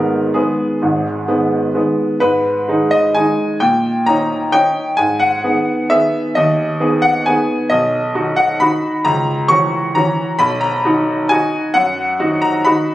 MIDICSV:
0, 0, Header, 1, 2, 480
1, 0, Start_track
1, 0, Key_signature, 5, "minor"
1, 0, Tempo, 466200
1, 844, Time_signature, 3, 2, 24, 8
1, 4671, Tempo, 451128
1, 13620, End_track
2, 0, Start_track
2, 0, Title_t, "Grand piano"
2, 0, Program_c, 0, 0
2, 0, Control_c, 0, 64, 127
2, 0, Note_on_c, 0, 32, 45
2, 0, Note_on_c, 0, 44, 45
2, 0, Note_on_c, 0, 51, 37
2, 0, Note_on_c, 0, 56, 34
2, 0, Note_on_c, 0, 59, 39
2, 0, Note_on_c, 0, 70, 68
2, 319, Note_off_c, 0, 51, 0
2, 322, Note_off_c, 0, 56, 0
2, 322, Note_off_c, 0, 59, 0
2, 351, Note_on_c, 0, 68, 55
2, 357, Note_off_c, 0, 70, 0
2, 359, Note_on_c, 0, 51, 34
2, 363, Note_on_c, 0, 56, 38
2, 368, Note_on_c, 0, 59, 44
2, 375, Control_c, 0, 64, 0
2, 388, Note_off_c, 0, 32, 0
2, 389, Note_off_c, 0, 44, 0
2, 801, Note_off_c, 0, 51, 0
2, 802, Note_off_c, 0, 56, 0
2, 805, Note_off_c, 0, 59, 0
2, 846, Note_on_c, 0, 32, 42
2, 846, Note_on_c, 0, 44, 45
2, 1075, Control_c, 0, 64, 127
2, 1300, Note_off_c, 0, 32, 0
2, 1300, Note_off_c, 0, 44, 0
2, 1317, Note_on_c, 0, 51, 34
2, 1318, Note_on_c, 0, 56, 38
2, 1321, Note_on_c, 0, 59, 42
2, 1754, Note_off_c, 0, 51, 0
2, 1755, Note_off_c, 0, 56, 0
2, 1756, Note_off_c, 0, 59, 0
2, 1793, Note_on_c, 0, 51, 35
2, 1799, Note_on_c, 0, 56, 36
2, 1802, Note_on_c, 0, 59, 39
2, 1806, Control_c, 0, 64, 0
2, 2030, Note_off_c, 0, 68, 0
2, 2234, Note_off_c, 0, 51, 0
2, 2237, Note_off_c, 0, 56, 0
2, 2238, Note_off_c, 0, 59, 0
2, 2268, Note_on_c, 0, 71, 79
2, 2278, Note_on_c, 0, 44, 52
2, 2465, Control_c, 0, 64, 127
2, 2746, Note_off_c, 0, 44, 0
2, 2758, Note_on_c, 0, 51, 48
2, 2765, Note_on_c, 0, 56, 43
2, 2768, Note_on_c, 0, 63, 45
2, 2995, Note_on_c, 0, 75, 78
2, 3002, Note_off_c, 0, 71, 0
2, 3209, Note_off_c, 0, 51, 0
2, 3213, Note_off_c, 0, 56, 0
2, 3214, Note_off_c, 0, 63, 0
2, 3239, Note_on_c, 0, 80, 82
2, 3246, Note_off_c, 0, 75, 0
2, 3248, Note_on_c, 0, 51, 41
2, 3255, Note_on_c, 0, 56, 47
2, 3258, Note_on_c, 0, 63, 49
2, 3268, Control_c, 0, 64, 0
2, 3684, Note_off_c, 0, 51, 0
2, 3688, Note_off_c, 0, 56, 0
2, 3689, Note_off_c, 0, 63, 0
2, 3708, Note_on_c, 0, 79, 77
2, 3720, Note_off_c, 0, 80, 0
2, 3721, Note_on_c, 0, 46, 55
2, 3928, Control_c, 0, 64, 127
2, 4182, Note_off_c, 0, 46, 0
2, 4184, Note_on_c, 0, 82, 85
2, 4190, Note_off_c, 0, 79, 0
2, 4195, Note_on_c, 0, 51, 45
2, 4200, Note_on_c, 0, 61, 44
2, 4203, Note_on_c, 0, 63, 50
2, 4629, Note_off_c, 0, 51, 0
2, 4631, Note_off_c, 0, 61, 0
2, 4632, Note_off_c, 0, 63, 0
2, 4658, Note_on_c, 0, 79, 90
2, 4664, Note_off_c, 0, 82, 0
2, 4667, Note_on_c, 0, 51, 44
2, 4672, Note_on_c, 0, 61, 47
2, 4675, Note_on_c, 0, 63, 50
2, 4685, Control_c, 0, 64, 0
2, 5102, Note_off_c, 0, 51, 0
2, 5105, Note_off_c, 0, 61, 0
2, 5106, Note_off_c, 0, 63, 0
2, 5131, Note_on_c, 0, 80, 86
2, 5140, Note_off_c, 0, 79, 0
2, 5142, Note_on_c, 0, 44, 58
2, 5372, Note_on_c, 0, 78, 77
2, 5374, Control_c, 0, 64, 127
2, 5375, Note_off_c, 0, 80, 0
2, 5612, Note_off_c, 0, 44, 0
2, 5631, Note_on_c, 0, 59, 45
2, 5632, Note_on_c, 0, 51, 45
2, 5637, Note_on_c, 0, 68, 50
2, 5641, Control_c, 0, 64, 0
2, 6087, Note_off_c, 0, 51, 0
2, 6087, Note_off_c, 0, 59, 0
2, 6090, Note_off_c, 0, 68, 0
2, 6120, Note_on_c, 0, 76, 84
2, 6122, Note_off_c, 0, 78, 0
2, 6129, Note_on_c, 0, 51, 49
2, 6132, Note_on_c, 0, 59, 47
2, 6138, Note_on_c, 0, 68, 49
2, 6572, Note_off_c, 0, 51, 0
2, 6574, Note_off_c, 0, 59, 0
2, 6577, Note_off_c, 0, 68, 0
2, 6602, Note_on_c, 0, 75, 76
2, 6610, Note_off_c, 0, 76, 0
2, 6616, Note_on_c, 0, 39, 55
2, 6846, Control_c, 0, 64, 127
2, 7072, Note_off_c, 0, 39, 0
2, 7078, Note_on_c, 0, 51, 48
2, 7082, Note_on_c, 0, 59, 45
2, 7089, Note_on_c, 0, 68, 56
2, 7312, Note_on_c, 0, 78, 84
2, 7321, Note_off_c, 0, 75, 0
2, 7526, Note_off_c, 0, 51, 0
2, 7528, Note_off_c, 0, 59, 0
2, 7531, Note_off_c, 0, 68, 0
2, 7564, Note_off_c, 0, 78, 0
2, 7567, Note_on_c, 0, 80, 78
2, 7577, Note_on_c, 0, 51, 50
2, 7580, Note_on_c, 0, 59, 47
2, 7586, Control_c, 0, 64, 0
2, 7587, Note_on_c, 0, 68, 49
2, 8008, Note_off_c, 0, 51, 0
2, 8009, Note_off_c, 0, 59, 0
2, 8013, Note_off_c, 0, 68, 0
2, 8032, Note_on_c, 0, 75, 79
2, 8042, Note_on_c, 0, 35, 53
2, 8045, Note_off_c, 0, 80, 0
2, 8280, Control_c, 0, 64, 127
2, 8501, Note_off_c, 0, 35, 0
2, 8510, Note_on_c, 0, 51, 50
2, 8514, Note_on_c, 0, 63, 45
2, 8517, Note_on_c, 0, 66, 50
2, 8743, Note_on_c, 0, 78, 77
2, 8754, Note_off_c, 0, 75, 0
2, 8961, Note_off_c, 0, 51, 0
2, 8963, Note_off_c, 0, 63, 0
2, 8965, Note_off_c, 0, 66, 0
2, 8994, Note_on_c, 0, 83, 85
2, 8999, Note_off_c, 0, 78, 0
2, 9004, Note_on_c, 0, 51, 47
2, 9007, Note_on_c, 0, 63, 50
2, 9014, Note_on_c, 0, 66, 55
2, 9022, Control_c, 0, 64, 0
2, 9435, Note_off_c, 0, 51, 0
2, 9436, Note_off_c, 0, 63, 0
2, 9439, Note_off_c, 0, 66, 0
2, 9468, Note_on_c, 0, 82, 89
2, 9472, Note_off_c, 0, 83, 0
2, 9477, Note_on_c, 0, 37, 61
2, 9707, Control_c, 0, 64, 127
2, 9929, Note_off_c, 0, 37, 0
2, 9935, Note_on_c, 0, 85, 101
2, 9939, Note_off_c, 0, 82, 0
2, 9949, Note_on_c, 0, 52, 50
2, 9954, Note_on_c, 0, 61, 54
2, 9956, Note_on_c, 0, 66, 53
2, 10392, Note_off_c, 0, 52, 0
2, 10395, Note_off_c, 0, 61, 0
2, 10396, Note_off_c, 0, 66, 0
2, 10428, Note_off_c, 0, 85, 0
2, 10430, Note_on_c, 0, 82, 88
2, 10437, Note_on_c, 0, 52, 47
2, 10444, Note_on_c, 0, 61, 52
2, 10446, Note_on_c, 0, 66, 51
2, 10448, Control_c, 0, 64, 0
2, 10866, Note_off_c, 0, 52, 0
2, 10870, Note_off_c, 0, 61, 0
2, 10870, Note_off_c, 0, 66, 0
2, 10895, Note_on_c, 0, 83, 93
2, 10904, Note_on_c, 0, 35, 70
2, 10905, Note_off_c, 0, 82, 0
2, 11096, Control_c, 0, 64, 127
2, 11129, Note_on_c, 0, 82, 85
2, 11134, Note_off_c, 0, 83, 0
2, 11364, Note_off_c, 0, 35, 0
2, 11385, Note_on_c, 0, 51, 52
2, 11387, Note_on_c, 0, 63, 52
2, 11388, Note_on_c, 0, 66, 49
2, 11832, Note_off_c, 0, 51, 0
2, 11833, Note_off_c, 0, 63, 0
2, 11834, Note_off_c, 0, 66, 0
2, 11859, Note_on_c, 0, 80, 94
2, 11866, Note_off_c, 0, 82, 0
2, 11872, Note_on_c, 0, 51, 49
2, 11877, Note_on_c, 0, 63, 51
2, 11880, Note_on_c, 0, 66, 57
2, 11889, Control_c, 0, 64, 0
2, 12304, Note_off_c, 0, 51, 0
2, 12306, Note_off_c, 0, 63, 0
2, 12308, Note_off_c, 0, 66, 0
2, 12333, Note_on_c, 0, 78, 88
2, 12340, Note_off_c, 0, 80, 0
2, 12345, Note_on_c, 0, 42, 61
2, 12554, Control_c, 0, 64, 127
2, 12802, Note_off_c, 0, 42, 0
2, 12813, Note_on_c, 0, 51, 58
2, 12819, Note_on_c, 0, 63, 51
2, 12823, Note_on_c, 0, 66, 61
2, 13054, Note_on_c, 0, 82, 86
2, 13056, Note_off_c, 0, 78, 0
2, 13267, Note_off_c, 0, 51, 0
2, 13270, Note_off_c, 0, 63, 0
2, 13272, Note_off_c, 0, 66, 0
2, 13299, Note_on_c, 0, 83, 87
2, 13307, Note_off_c, 0, 82, 0
2, 13310, Note_on_c, 0, 51, 51
2, 13315, Note_on_c, 0, 63, 55
2, 13318, Note_on_c, 0, 66, 63
2, 13323, Control_c, 0, 64, 0
2, 13620, Note_off_c, 0, 51, 0
2, 13620, Note_off_c, 0, 63, 0
2, 13620, Note_off_c, 0, 66, 0
2, 13620, Note_off_c, 0, 83, 0
2, 13620, End_track
0, 0, End_of_file